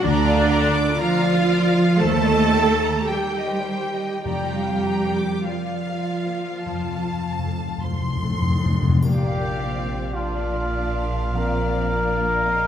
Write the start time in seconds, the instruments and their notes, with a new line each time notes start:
Already playing: harp D5
0.03 double bass section D2, cello section D3, harp D3, viola section D4, violin section D5 A#5
0.27 violin section F5
0.35 harp A#3
0.52 violin section A#5
0.68 harp F4
0.74 violin section D6
0.98 cello section F3, viola section F4, harp D5, violin section F5 A#5
1.23 violin section F5
1.32 harp A#4
1.48 violin section D5
1.65 harp F4
1.74 violin section F5
1.98 double bass section D#2, harp D#3, cello section A3, viola section A4, violin section C5 A5
2.26 violin section D#5
2.35 harp D#4
2.52 violin section G5
2.71 harp G4
2.80 violin section A#5
3.08 cello section G3, viola section G4, harp A#4, violin section G5
3.37 violin section D#5
3.47 harp C5
3.64 violin section C5
3.85 harp G4
3.94 violin section D#5
4.24 timpani F2, double bass section F2, harp F3, cello section G3, viola section G4, violin section D5 G5 A#5
4.54 violin section F5
4.66 harp F4
4.85 violin section A#5
5.06 harp A#4
5.16 violin section D6
5.46 cello section F3, viola section F4, harp D5, violin section F5
5.87 harp A#4
6.26 harp A#3
6.65 timpani F2, double bass section F2, harp F3, violin section A5
6.74 timpani F2
6.82 timpani F2
6.89 timpani F2
6.97 timpani F2
7.05 timpani F2, harp F4
7.14 timpani F2
7.22 timpani F2
7.29 timpani F2
7.39 timpani F2
7.44 timpani F2, harp A4
7.54 timpani F2
7.62 timpani F2
7.69 timpani F2
7.78 timpani F2
7.82 timpani F2, harp C5, violin section C6
7.93 timpani F2
8.01 timpani F2
8.10 timpani F2
8.17 timpani F2
8.23 timpani F2, harp A4
8.33 timpani F2
8.42 timpani F2
8.50 timpani F2
8.58 timpani F2
8.63 timpani F2, harp C4
8.74 timpani F2
8.82 timpani F2
8.89 timpani F2
9.03 double bass section A#1, cello section A#2, harp A#2, timpani A#2, violin section A#3 D5 F5, trumpet section G4, triangle
9.41 harp D4
9.60 violin section C4
9.78 harp F4
10.14 violin section D4 D5 F5, trumpet section F4, harp D5
10.53 harp A#4
10.73 violin section D4
10.94 harp F4
11.33 harp F3, violin section C4 D5, viola section F4, trumpet section A#4
11.73 harp D4
11.92 violin section A#3, viola section D4
12.10 harp F4
12.45 violin section A#3 D#5 F5, viola section C4, harp D5